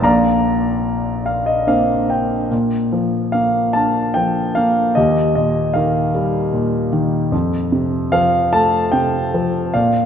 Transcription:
0.02 A#1 A#2 D5 F5 A#5
1.26 F5
1.46 D#5
1.67 A#3 C4 D4 F5
2.10 G5
2.51 A#2
2.93 F3
3.32 A#3 F5
3.73 D4 A5
4.14 F3 G5
4.55 A#3 F5
4.95 D#2 G4 D#5
5.35 A#2 D#5
5.74 D#3 A#4 F5
6.15 G3
6.53 A#2
6.93 D#3
7.32 F2
7.72 C3
8.12 F3 F5
8.53 A3 A5
8.92 C3 G5
9.34 F3
9.74 A#2 D5 F5

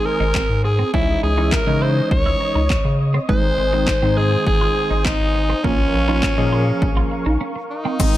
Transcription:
Already playing: D#3 G#3 C4 D#4 C5 G#5 D#6
0.06 A#4, muted clean electric guitar stroke
0.20 G#1 D#4
0.34 C4, kick, snare, clap
0.50 G#2
0.64 G#4, muted clean electric guitar stroke
0.79 C4
0.93 C#2 E3 G#3 C#4 D#4 E4 C#5 D#5, kick
1.23 C#2 G#4, muted clean electric guitar stroke
1.38 E3 G#3 C#4 D#4 E4
1.52 A#4, muted clean electric guitar stroke, kick, snare, clap
1.67 C#3 E3 G#3 C#4 D#4
1.82 E4 C5
2.11 C#2 C#5, kick
2.26 E4
2.41 muted clean electric guitar stroke
2.55 C#2 D#4
2.70 C#4, kick, snare, clap
2.85 C#3, muted clean electric guitar stroke
3.14 C4
3.29 G#1 D#3 G#3 C4 D#4 C5, kick
3.58 G#1, muted clean electric guitar stroke
3.73 D#3 G#3 C4 D#4
3.87 muted clean electric guitar stroke, kick, snare, clap
4.02 G#2 D#3 G#3 C4 D#4
4.17 D#4 G#4
4.47 G#1 G#4, kick
4.61 F4
4.76 muted clean electric guitar stroke
4.91 G#1 D#4
5.05 C4 D#4, kick, snare, clap
5.20 G#1
5.35 muted clean electric guitar stroke
5.50 C4
5.64 A#1 F3 A#3 C#4 F4, kick
5.94 A#1, muted clean electric guitar stroke
6.08 F3 A#3 C#4 D#4 F4
6.23 muted clean electric guitar stroke, kick, snare, clap
6.38 A#2 F3 A#3 C#4 D#4 G#4
6.53 F4
6.82 A#1, kick
6.97 F4
7.11 muted clean electric guitar stroke
7.26 A#1 D#4
7.41 C#4
7.56 muted clean electric guitar stroke
7.70 D#4
7.85 C4
7.99 G#1 D#3 G#3 C4 D#4, kick, closed hi-hat, crash, shaker
8.14 closed hi-hat, shaker

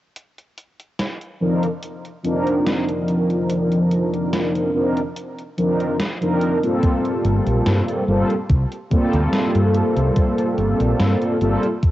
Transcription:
0.16 closed hi-hat
0.38 closed hi-hat
0.58 closed hi-hat
0.80 closed hi-hat
0.99 snare, closed hi-hat
1.21 closed hi-hat
1.40 F3 C4 D4 D#4 A#4
1.63 closed hi-hat
1.83 closed hi-hat
2.05 closed hi-hat
2.23 F3 C4 D4 D#4 A#4, closed hi-hat
2.47 closed hi-hat
2.66 snare, closed hi-hat
2.88 closed hi-hat
3.08 closed hi-hat
3.30 closed hi-hat
3.50 closed hi-hat
3.72 closed hi-hat
3.91 closed hi-hat
4.14 closed hi-hat
4.33 snare, closed hi-hat
4.55 closed hi-hat
4.73 F3 C4 D4 D#4 A#4
4.97 closed hi-hat
5.16 closed hi-hat
5.39 closed hi-hat
5.57 F3 C4 D4 D#4 A#4, closed hi-hat
5.80 closed hi-hat
6.00 snare, closed hi-hat
6.20 F3 C4 D4 D#4 A#4, closed hi-hat
6.41 closed hi-hat
6.62 G3 A#3 C4 F4 A4, closed hi-hat
6.83 kick, closed hi-hat
7.05 closed hi-hat
7.25 G1, closed hi-hat
7.47 A#1, closed hi-hat
7.66 G2, snare, closed hi-hat
7.88 closed hi-hat
8.07 G1 G3 A#3 C4 F4 A4
8.30 closed hi-hat
8.50 C2, kick, closed hi-hat
8.72 closed hi-hat
8.90 G3 A#3 C4 F4 A4, kick, closed hi-hat
9.13 D2, closed hi-hat
9.33 snare, closed hi-hat
9.55 G2, closed hi-hat
9.74 closed hi-hat
9.96 C2, closed hi-hat
10.16 kick, closed hi-hat
10.38 closed hi-hat
10.58 G1, closed hi-hat
10.80 A#1, closed hi-hat
11.00 G2, snare, closed hi-hat
11.22 closed hi-hat
11.41 G1 G3 A#3 C4 F4 A4, closed hi-hat
11.63 closed hi-hat
11.83 kick, closed hi-hat

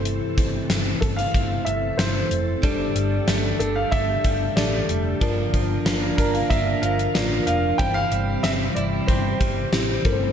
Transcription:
Already playing: G1 G2 C3 E3 A3 C4 E4 A4 C5
0.05 closed hi-hat
0.38 G1, kick, closed hi-hat
0.70 G1, snare, closed hi-hat
1.01 G1 A4, kick, closed hi-hat
1.16 F5, closed hi-hat
1.34 G1, kick, closed hi-hat
1.65 G1 E5, closed hi-hat
1.97 G1 C4 E4 A4 C5, snare, closed hi-hat
2.31 F1, closed hi-hat
2.63 G1 G2 D3 G3 D4 G4 A4 D5, kick, closed hi-hat
2.96 G1 G3, closed hi-hat
3.28 G1 A3, snare, closed hi-hat
3.59 G1 D4 A4, closed hi-hat
3.76 F5
3.91 G1 A3 E5, kick, closed hi-hat
4.24 G1 G3, kick, closed hi-hat
4.56 A1 A3 D4 G4 A4 D5, snare, closed hi-hat
4.89 F1 G3, closed hi-hat
5.21 G1 G2 F3 A#3 D4 F4 A#4 D5, kick, closed hi-hat
5.54 G1 F3, kick, closed hi-hat
5.85 G1 A#3, snare, closed hi-hat
6.17 G1 D4 A#4, kick, closed hi-hat
6.34 F5, closed hi-hat
6.50 G1 A#3 E5, kick, closed hi-hat
6.82 G1 F3 F5, closed hi-hat
6.99 closed hi-hat
7.14 A1 A#3 D4 F4 A#4 D5, snare, closed hi-hat
7.47 F1 F3 F5, closed hi-hat
7.78 G1 G2 C3 E3 G3 C4 E4 G4 C5 G5, kick, closed hi-hat
7.94 F5
8.11 G1 G3, closed hi-hat
8.43 G1 C4 E5, snare, closed hi-hat
8.75 G1 E4 D5, closed hi-hat
9.07 G1 C4 C5, kick, closed hi-hat
9.40 G1 G3, kick, closed hi-hat
9.72 A1 C4 E4 G4 C5, snare, closed hi-hat
10.05 G1 G2 C3 G3 A3 C4 E4 A4 A#4, kick, closed hi-hat
10.12 C5

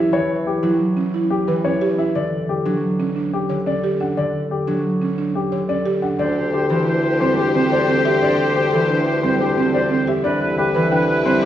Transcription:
Already playing: E3 F#3 E4 E5
0.12 E3 C#5
0.47 G4
0.63 F#3 E4
0.97 C#4
1.14 E4
1.30 G4
1.47 E3 B4
1.65 C#4 C#5
1.81 G4
1.98 E4 E5
2.15 D3 D5
2.49 G4
2.66 F#3 D4
3.00 C#4
3.16 D4
3.33 G4
3.49 D3 C#5
3.66 C#4 D5
3.84 G4
4.00 D4 F#5
4.17 D3 D5
4.51 G4
4.67 F#3 D4
5.01 C#4
5.18 D4
5.35 G4
5.52 D3 C#5
5.69 C#4 D5
5.86 G4
6.02 D4 F#5
6.19 D2 D3 D4 G4 C5 D5
6.36 C5
6.53 G4 C5
6.70 E3 A4 C5
6.87 D4 C5
7.04 C5
7.20 G3 C4 C5
7.38 D4 G4 C5
7.54 D3 C4 C5
7.72 C5 D5
7.88 C4 C5
8.05 G4 C5 E5
8.22 D3 D4 C5 D5
8.39 C5
8.55 G4 C5
8.73 E3 A4 C5
8.89 D4 C5
9.06 C5
9.23 G3 C4 C5
9.40 D4 G4 C5
9.57 D3 C4 C5
9.74 C5 D5
9.91 C4 C5
10.07 G4 E5
10.24 C2 D3 D4 E4 B4 D5
10.41 B4
10.57 G4 B4
10.75 E3 B4
10.92 D4 B4 G5
11.09 B4
11.26 G3 C4 B4 C5

